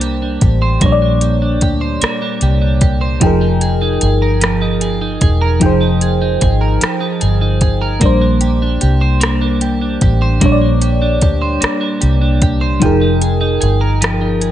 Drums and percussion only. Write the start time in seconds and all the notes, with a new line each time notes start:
0.01 closed hi-hat
0.41 kick, closed hi-hat
0.81 kick, closed hi-hat
1.21 closed hi-hat
1.61 kick, closed hi-hat
2.02 cross-stick, closed hi-hat
2.41 closed hi-hat
2.81 kick, closed hi-hat
3.21 kick, closed hi-hat
3.61 closed hi-hat
4.01 closed hi-hat
4.41 cross-stick, closed hi-hat
4.81 closed hi-hat
5.21 kick, closed hi-hat
5.61 kick, closed hi-hat
6.01 closed hi-hat
6.41 kick, closed hi-hat
6.81 cross-stick, closed hi-hat
7.21 closed hi-hat
7.61 kick, closed hi-hat
8.01 kick, closed hi-hat
8.41 closed hi-hat
8.81 closed hi-hat
9.21 cross-stick, closed hi-hat
9.61 closed hi-hat
10.01 kick, closed hi-hat
10.41 kick, closed hi-hat
10.81 closed hi-hat
11.21 kick, closed hi-hat
11.62 cross-stick, closed hi-hat
12.02 closed hi-hat
12.42 kick, closed hi-hat
12.82 kick, closed hi-hat
13.21 closed hi-hat
13.62 closed hi-hat
14.02 cross-stick, closed hi-hat
14.41 closed hi-hat